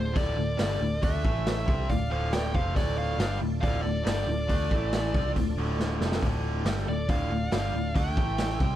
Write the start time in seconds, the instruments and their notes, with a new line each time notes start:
Already playing: picked electric bass D1, overdriven electric guitar A2, tonewheel organ D4 F4 A4 D5, lead electric guitar G#4 C5
0.13 picked electric bass D1, overdriven electric guitar D2 A2 D3, lead electric guitar A4 D5, kick, open hi-hat
0.36 picked electric bass D1, overdriven electric guitar D2 A2
0.57 picked electric bass G1, overdriven electric guitar G2 D3 G3, lead electric guitar A4 D5, snare, open hi-hat
0.81 picked electric bass D1, overdriven electric guitar D2 A2
1.02 picked electric bass D2, overdriven electric guitar D3 A3 D4, lead electric guitar A4 E5, kick, open hi-hat
1.23 picked electric bass A1, overdriven electric guitar A2 E3 A3, tonewheel organ A3 E4 A4 E5, kick
1.46 snare, open hi-hat
1.66 picked electric bass C2, overdriven electric guitar C3 G3 C4, tonewheel organ D4 F4 A4 D5, kick
1.89 picked electric bass D1, overdriven electric guitar D2 A2, lead electric guitar D5 F5, kick, open hi-hat
2.10 picked electric bass D1, overdriven electric guitar D2 A2 D3, lead electric guitar C5 F5
2.32 lead electric guitar D5 G5, snare, open hi-hat
2.54 picked electric bass F1, overdriven electric guitar F2 C3 F3, lead electric guitar C5 F5, kick
2.76 picked electric bass D1, overdriven electric guitar D2 A2 D3, lead electric guitar A4 D5, kick, open hi-hat
2.98 lead electric guitar D5 F5
3.18 picked electric bass G1, overdriven electric guitar G2 D3 G3, snare, open hi-hat
3.40 picked electric bass D1, overdriven electric guitar D2 A2
3.61 picked electric bass D1, overdriven electric guitar D2 A2 D3, lead electric guitar D5 F5, kick, open hi-hat
3.82 picked electric bass D1, overdriven electric guitar D2 A2, lead electric guitar A4 D5
4.04 picked electric bass G1, overdriven electric guitar G2 D3 G3, lead electric guitar A4 D5, snare, open hi-hat
4.27 picked electric bass D1, overdriven electric guitar D2 A2
4.48 picked electric bass D2, overdriven electric guitar D3 A3 D4, kick, open hi-hat
4.69 picked electric bass A1, overdriven electric guitar A2 E3 A3, tonewheel organ A3 E4 A4 E5, kick
4.92 snare, open hi-hat
5.14 picked electric bass C2, overdriven electric guitar C3 G3 C4, tonewheel organ D4 F4 A4 D5, kick
5.36 picked electric bass D1, overdriven electric guitar D2 A2, kick, open hi-hat
5.57 picked electric bass D1, overdriven electric guitar D2 A2 D3
5.80 snare
6.01 picked electric bass F1, overdriven electric guitar F2 C3 F3, snare
6.12 snare
6.22 picked electric bass D1, overdriven electric guitar D2 A2 D3, kick, open hi-hat
6.65 picked electric bass G1, overdriven electric guitar G2 D3 G3, snare, open hi-hat
6.77 snare
6.87 picked electric bass D1, overdriven electric guitar D2 A2, lead electric guitar A4 D5
7.08 picked electric bass D1, overdriven electric guitar D2 A2 D3, lead electric guitar D5 F5, kick, open hi-hat
7.30 picked electric bass D1, overdriven electric guitar D2 A2
7.51 picked electric bass G1, overdriven electric guitar G2 D3 G3, lead electric guitar D5 F5, snare, open hi-hat
7.73 picked electric bass D1, overdriven electric guitar D2 A2
7.95 picked electric bass D2, overdriven electric guitar D3 A3 D4, lead electric guitar E5 G5, kick, open hi-hat
8.16 picked electric bass A1, overdriven electric guitar A2 E3 A3, tonewheel organ A3 E4 A4 E5, kick
8.38 snare, open hi-hat
8.50 snare
8.60 picked electric bass C2, overdriven electric guitar C3 G3 C4, kick